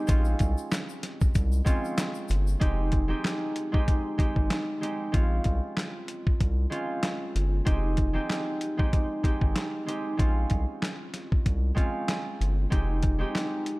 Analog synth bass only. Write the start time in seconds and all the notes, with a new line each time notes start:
0.09 A#1
0.41 C2
1.36 C2
2.30 G1
2.62 F1
4.36 G#1
5.14 A#1
5.46 C2
6.41 C2
7.36 G1
7.67 F1
9.42 G#1
10.20 A#1
10.51 C2
11.46 C2
12.41 G1
12.72 F1